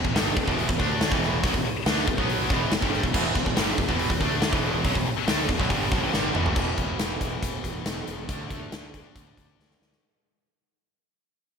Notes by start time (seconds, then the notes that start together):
0.04 E1 E2 B2, kick
0.15 G1 G2 D3 G3, snare, open hi-hat
0.37 E1 E2 B2, kick
0.47 E1 E2 B2 E3, kick
0.59 open hi-hat
0.68 E1 E2 B2, kick
0.79 D2 D3 A3 D4, kick
1.01 snare, open hi-hat
1.11 E1 E2 B2 E3, kick
1.23 snare
1.43 B1 B2 F#3, kick, open hi-hat
1.54 E1 E2 B2, kick
1.65 muted distorted electric guitar stroke, muted overdriven electric guitar stroke, muted fingered electric bass stroke
1.86 D2 D3 A3 D4, snare, open hi-hat
1.98 snare
2.08 E1 E2 B2, kick
2.18 B1 B2 F#3 B3, kick
2.29 open hi-hat
2.50 E1 E2 B2 E3, kick
2.71 E1 E2 B2, snare, open hi-hat
2.82 G1 G2 D3 G3, kick
2.94 snare
3.03 E1 E2 B2, kick
3.13 E1 E2 B2 E3, kick, crash
3.35 E1 E2 B2, kick
3.45 E1 E2 B2, kick
3.56 G1 G2 D3 G3, snare, open hi-hat
3.78 E1 E2 B2, kick
3.89 E1 E2 B2 E3, kick
3.99 open hi-hat
4.10 E1 E2 B2, kick
4.20 D2 D3 A3 D4, kick
4.42 snare, open hi-hat
4.53 E1 E2 B2 E3, kick
4.84 B1 B2 F#3, kick, open hi-hat
4.95 E1 E2 B2, kick
5.06 muted fingered electric bass stroke, muted distorted electric guitar stroke, muted overdriven electric guitar stroke
5.26 D2 D3 A3 D4, snare, open hi-hat
5.47 E1 E2 B2, kick
5.58 B1 B2 F#3, kick
5.69 G1 G2 D3 G3, kick, open hi-hat
5.91 B1 B2 F#3, kick
6.02 A1 A2 E3
6.13 G1 G2 D3 G3, snare
6.35 E1 E2 B2 E3, mid tom
6.46 floor tom
6.56 E1 E2 B2 E3, kick, crash
6.77 E1, kick, closed hi-hat
6.99 E1, snare, closed hi-hat
7.21 E1, kick, closed hi-hat
7.42 E1, kick, closed hi-hat
7.64 E1, kick, closed hi-hat
7.86 E1, snare, closed hi-hat
8.07 E1, closed hi-hat
8.28 D2 D3 A3 D4, kick, closed hi-hat
8.50 D2, kick, closed hi-hat
8.72 D2, snare, closed hi-hat
8.94 kick, closed hi-hat
9.15 D2, kick, closed hi-hat
9.37 D2, kick, closed hi-hat
9.59 D2, snare
9.71 snare
9.81 D2, snare
9.92 snare